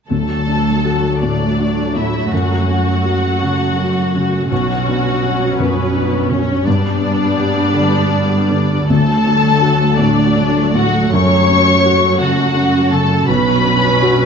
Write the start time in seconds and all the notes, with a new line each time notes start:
0.09 D2 D3 F#3 A3 A4 A5
0.47 D4
0.85 F#4
1.22 A2 D4 A4 D5
1.60 D4 F#4
1.95 A2 D4 E4 E5
2.31 F#2 F#4 F#5
2.68 C#4
3.04 F#4
3.40 C#3 A4
3.78 C#4 F#4
4.14 C#3 C#4
4.50 B1 B2 F#3 C#4 F#4 F#5
4.86 B3 D4
5.22 F#4
5.57 F#2 B3 B4 C#5
5.95 D4 F#4
6.31 F#2 C#4 C#5
6.66 G2 G3 B3 D4 D5
7.01 D4
7.37 G4
7.73 D3 B4
8.11 D4 G4
8.51 D3 D4
8.89 D2 D3 F#3 A3 A4 A5
9.26 D4
9.62 F#4
9.98 A2 D4 A4 D5
10.35 D4 F#4
10.74 A2 D4 F#4 F#5
11.13 F#2 C#5 C#6
11.50 C#4
11.86 F#4
12.20 C#3 F#4 A4 F#5
12.56 C#4 F#4
12.91 C#3 C#4 A4 A5
13.28 B1 B2 F#3 C#4 B4 B5
13.65 D4
14.02 F#4